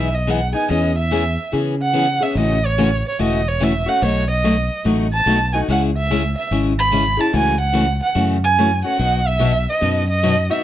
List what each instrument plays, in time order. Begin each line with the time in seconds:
Already playing: fingered electric bass B1, violin E5
0.14 violin D#5
0.27 steel-string acoustic guitar E3 B3 D#4 G#4, violin F#5
0.53 steel-string acoustic guitar B3 D#4 G#4, violin G#5
0.68 fingered electric bass E2, steel-string acoustic guitar E3 B3 C#4 G#4, violin D#5
0.98 violin E5
1.11 steel-string acoustic guitar E3 B3 C#4 G#4
1.52 fingered electric bass C#3, steel-string acoustic guitar E3 B3 C#4 G#4
1.83 violin F#5
1.93 steel-string acoustic guitar E3 B3 C#4 G#4
2.20 steel-string acoustic guitar B3 C#4 G#4, violin E5
2.35 fingered electric bass A1, steel-string acoustic guitar C#3 E3 A3 C#4 F#4
2.39 violin D#5
2.66 violin C#5
2.78 steel-string acoustic guitar C#3 E3 A3 C#4 F#4
3.08 violin C#5
3.19 fingered electric bass E1, steel-string acoustic guitar C#3 E3 A3 C#4 F#4, violin D#5
3.48 violin C#5
3.60 steel-string acoustic guitar C#3 E3 A3 C#4 F#4, violin E5
3.86 steel-string acoustic guitar A3 C#4 F#4, violin F#5
4.02 fingered electric bass B1, steel-string acoustic guitar B2 F#3 A3 D#4 F#4, violin C#5
4.31 violin D#5
4.44 steel-string acoustic guitar B2 F#3 A3 D#4 F#4
4.84 fingered electric bass A1, steel-string acoustic guitar B2 F#3 A3 D#4 F#4
5.13 violin A5
5.26 fingered electric bass B1, steel-string acoustic guitar B2 F#3 A3 D#4 F#4
5.53 steel-string acoustic guitar A3 D#4 F#4, violin G#5
5.68 fingered electric bass C#2, steel-string acoustic guitar C#3 G#3 C#4 E4 G#4, violin F#5
5.98 violin E5
6.11 steel-string acoustic guitar C#3 G#3 C#4 E4 G#4
6.38 violin E5
6.51 fingered electric bass G#1, steel-string acoustic guitar C#3 G#3 C#4 E4 G#4
6.79 violin B5
6.92 steel-string acoustic guitar C#3 G#3 C#4 E4 G#4
7.17 steel-string acoustic guitar C#4 E4 G#4, violin A5
7.33 fingered electric bass C#2, steel-string acoustic guitar C#3 E3 A3 C#4 F#4
7.37 violin G#5
7.61 violin F#5
7.73 steel-string acoustic guitar C#3 E3 A3 C#4 F#4
8.03 violin F#5
8.15 fingered electric bass F#2, steel-string acoustic guitar C#3 E3 A3 C#4 F#4
8.44 violin G#5
8.58 steel-string acoustic guitar C#3 E3 A3 C#4 F#4
8.84 steel-string acoustic guitar A3 C#4 F#4, violin F#5
8.99 fingered electric bass B1, steel-string acoustic guitar B2 F#3 B3 D#4 F#4
9.27 violin E5
9.39 steel-string acoustic guitar B2 F#3 B3 D#4 F#4
9.69 violin D#5
9.81 fingered electric bass F#2, steel-string acoustic guitar B2 F#3 B3 D#4 F#4
10.10 violin D#5
10.23 steel-string acoustic guitar B2 F#3 B3 D#4 F#4
10.50 steel-string acoustic guitar B3 D#4 F#4, violin E5